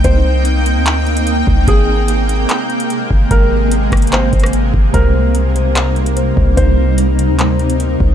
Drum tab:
HH |x-----------------------x-----------x-----------x-----------x-----x-----x-----------------------|x-----------------------x-----------x-----------x-----------x-----x-----x-----------------------|x-----------------------x-----------x--x--x--x--x-----------x---x---x---x-----------------------|x-----------------------x-----------x-----------x-----------x-----x-----x-----------------------|
CP |------------------------------------------------x-----------------------------------------------|------------------------------------------------x-----------------------------------------------|------------------------------------------------x-----------------------------------------------|------------------------------------------------x-----------------------------------------------|
SD |------------------------------------------------------------------------------------------------|------------------------------------------------------------------------------------------------|------------------------------------r-----------------------------r-----------------------------|------------------------------------------------------------------------------------------------|
BD |o-----------------------------------------------------------------------------------o-----------|o-----------------------------------------------------------------------------------o-----------|o-----------------------------------o-----------------------o-----------------------o-----------|o-----------------------------------------------------------------------------------o-----------|

HH |x-----------------------x-----------x-----------x-----------x-----x-----x-----------------------|
CP |------------------------------------------------x-----------------------------------------------|
SD |------------------------------------------------------------------------------------------------|
BD |o-----------------------------------------------------------------------------------o-----------|